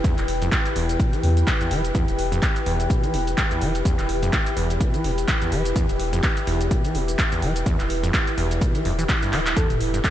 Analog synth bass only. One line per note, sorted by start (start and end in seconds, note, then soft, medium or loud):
0.18 0.26 E1 loud
0.28 0.48 E1 loud
0.76 0.96 E1 medium
1.23 1.43 E2 medium
1.71 1.91 E1 medium
2.08 2.17 E1 loud
2.19 2.39 E1 loud
2.66 2.86 E1 medium
3.14 3.34 E1 medium
3.61 3.81 E1 loud
3.99 4.07 E1 loud
4.09 4.29 E1 loud
4.57 4.77 E1 medium
5.04 5.24 E1 loud
5.52 5.72 E1 loud
5.89 5.98 E1 loud
6.00 6.20 E1 medium
6.47 6.67 E1 medium
6.95 7.15 E1 loud
7.42 7.62 E1 loud
7.80 7.88 E1 loud
7.90 8.10 E1 loud
8.38 8.58 E1 medium
8.85 9.05 E1 medium
9.33 9.53 D1 medium
9.70 9.79 E1 loud
9.80 10.00 E1 loud